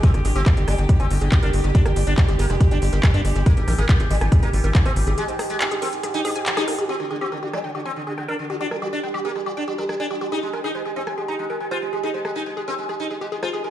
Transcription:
<<
  \new Staff \with { instrumentName = "Synth arpeggio sound" } { \time 4/4 \key g \phrygian \tempo 4 = 140 g'16 r16 aes'16 g'16 bes'16 g'16 d''16 g''16 g'16 aes''16 r16 aes'16 g''16 bes'16 r16 g'16 | g'16 bes'16 g'16 r16 g''16 g'16 aes'16 r16 g'16 g''16 g'16 bes'16 r16 aes''16 g'16 g'16 | aes'16 r16 bes'16 aes'16 c''16 aes'16 ees''16 aes''16 aes'16 bes''16 r16 bes'16 aes''16 c''16 r16 aes'16 | aes'16 c''16 aes'16 r16 aes''16 aes'16 bes'16 r16 aes'16 aes''16 aes'16 aes''16 r16 aes'16 bes'16 aes'16 |
g'16 r16 aes'16 g'16 bes'16 g'16 d''16 g''16 g'16 aes''16 r16 aes'16 g''16 bes'16 r16 g'16 | g'16 bes'16 g'16 r16 g''16 g'16 aes'16 r16 g'16 g''16 g'16 bes'16 r16 aes''16 g'16 g'16 | aes'16 r16 bes'16 aes'16 c''16 aes'16 ees''16 aes''16 aes'16 bes''16 r16 bes'16 aes''16 c''16 r16 aes'16 | aes'16 c''16 aes'16 r16 aes''16 aes'16 bes'16 r16 aes'16 aes''16 aes'16 g'16 aes'16 c''16 aes'16 bes'16 | }
  \new Staff \with { instrumentName = "Synth drone" } { \time 4/4 \key g \phrygian g'1~ | g'1~ | g'1~ | g'1 |
g'1~ | g'1~ | g'1~ | g'1 | }
  \new Staff \with { instrumentName = "Sitar" } { \clef bass \time 4/4 \key g \phrygian c'16 d16 d16 c'16 d16 d16 g16 d16 d16 c'16 d16 d16 d16 d'16 d16 d16 | d'16 g16 g16 d'16 g16 g16 bes16 g16 g16 d'16 g16 g16 g16 d'16 g16 g16 | bes16 ees16 ees16 bes16 ees16 ees16 g16 ees16 ees16 bes16 ees16 ees16 ees16 c'16 ees16 ees16 | aes16 aes,16 aes,16 aes16 aes,16 aes,16 c'16 aes,16 aes,16 ees'16 aes,16 aes,16 aes,16 ees'16 aes,16 aes,16 |
c'16 d16 d16 c'16 d16 d16 g16 d16 d16 c'16 d16 d16 d16 d'16 d16 d16 | d'16 g16 g16 d'16 g16 g16 bes16 g16 g16 d'16 g16 g16 g16 d'16 g16 g16 | ees'16 aes16 aes16 ees'16 aes16 aes16 c'16 aes16 aes16 ees'16 aes16 aes16 aes16 f'16 aes16 aes16 | ees'16 aes16 aes16 ees'16 aes16 aes16 c'16 aes16 aes16 ees'16 aes16 aes16 aes16 f'16 aes16 aes16 | }
  \new Staff \with { instrumentName = "Analog synth bass" } { \clef bass \time 4/4 \key g \phrygian r16 g,,16 aes,,16 g,,16 r16 g,,16 g,,16 g,,16 r16 g,,16 g,,16 g,,16 r16 g,,16 g,,16 g,,16 | r16 g,,16 g,,16 g,,16 r16 g,,16 g,,16 f,,16 r16 g,,16 g,,16 g,,16 r16 g,16 g,,16 g,,16 | r16 aes,,16 bes,,16 aes,,16 r16 aes,,16 aes,,16 aes,,16 r16 aes,,16 aes,,16 aes,,16 r16 aes,,16 aes,,16 aes,,16 | r1 |
r1 | r1 | r1 | r1 | }
  \new DrumStaff \with { instrumentName = "Drums" } \drummode { \time 4/4 <hh bd>16 <hh ss>16 hho16 hh16 <hc hh bd>16 hh16 <hho ss>16 hh16 <hh bd>16 hh16 hho16 hh16 <hc hh bd ss>16 hh16 hho16 hh16 | <hh bd>16 <hh ss>16 hho16 hh16 <hc hh bd>16 hh16 hho16 <hh ss>16 <hh bd>16 hh16 hho16 hh16 <hc hh bd ss>16 hh16 hho16 hh16 | <hh bd>16 hh16 <hho ss>16 hh16 <hc hh bd>16 hh16 hho16 <hh ss>16 <hh bd>16 hh16 hho16 hh16 <hc hh bd>16 <hh ss>16 hho16 hh16 | hh16 hh16 <hho ss>16 hh16 <hc hh>16 hh16 hho16 hh16 <hh ss>16 hh16 hho16 hh16 <hc hh>16 <hh ss>16 hho16 hh16 |
cymc16 ss8. r8 ss8 r4 ss4 | r16 ss8. r8. ss16 r4 ss4 | r8 ss8 r8. ss16 r4 r16 ss8. | r8 ss8 r4 ss4 r16 ss8. | }
>>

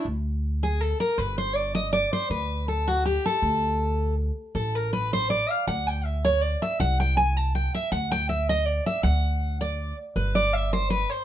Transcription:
<<
  \new Staff \with { instrumentName = "Steel-string acoustic guitar" } { \time 3/4 \key d \mixolydian \tempo 4 = 160 r4. gis'8 a'8 bes'8 | b'8 c''8 d''8 ees''8 d''8 c''8 | b'4 a'8 fis'8 g'8 a'8~ | a'2 r4 |
a'8 bes'8 b'8 c''8 d''8 f''8 | fis''8 g''8 e''8 cis''8 d''8 e''8 | fis''8 g''8 gis''8 a''8 g''8 e''8 | fis''8 g''8 e''8 ees''8 d''8 e''8 |
fis''4. d''4 r8 | b'8 d''8 e''8 c''8 b'8 c''8 | }
  \new Staff \with { instrumentName = "Upright bass" } { \clef bass \time 3/4 \key d \mixolydian d,2. | g,,2. | d,2. | d,2. |
a,,2. | d,2. | c,2. | d,2. |
d,2. | g,,2. | }
>>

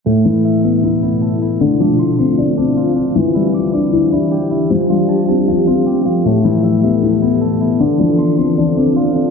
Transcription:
<<
  \new Staff \with { instrumentName = "Clean electric guitar" } { \time 4/4 \key a \minor \tempo 4 = 155 a8 e'8 e''8 e''4 e'8 a'8 e'8 | d8 d'8 c'''8 c'''4 d'8 f'8 d'8 | e8 e'8 d'''8 d'''4 e'8 g'8 e'8 | f8 f'8 a''8 a''4 f'8 g'8 f'8 |
a8 e'8 e''8 e''4 e'8 a'8 e'8 | d8 d'8 c'''8 c'''4 d'8 f'8 d'8 | }
  \new Staff \with { instrumentName = "Ambient pad" } { \time 4/4 \key a \minor << { e'1 | f'1 | g'1~ | g'1 |
a'1 | f'1 | } \\ { <b, a>1 | <d c'>1 | <e d'>1 | <f a>1 |
<e b>1 | <d c'>1 | } >> }
  \new Staff \with { instrumentName = "Grand piano" } { \time 4/4 \key a \minor a,8 e4 b8 e'8 b4. | d8 f4 c'8 d'8 c'4. | e8 g4 d'8 e'8 d'4. | f8 g4 c'8 f'8 c'4. |
a,8 e4 b8 e'8 b4. | d8 f4 c'8 d'8 c'4. | }
>>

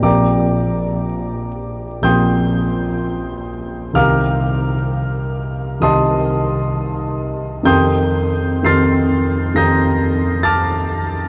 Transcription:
\new Staff \with { instrumentName = "Grand piano" } { \time 4/4 \key bes \major \tempo 4 = 64 << { <d'' g'' bes'' d'''>2 <g'' c''' ees''' g'''>2 | <f'' bes'' d''' f'''>2 <ees'' a'' c''' ees'''>2 | <g'' c''' ees''' g'''>4 <c''' f''' a''' c''''>4 <bes'' ees''' g''' bes'''>4 <a'' d''' f''' a'''>4 | } \\ { <bes,, f c' g' bes'>2 <bes,, f c' g' bes'>2 | <c, ees c' g' bes'>2 <c, ees c' g' bes'>2 | <f, ees c' g' bes'>4 <f, ees c' g' bes'>4 <f, ees c' g' bes'>2 | } >> }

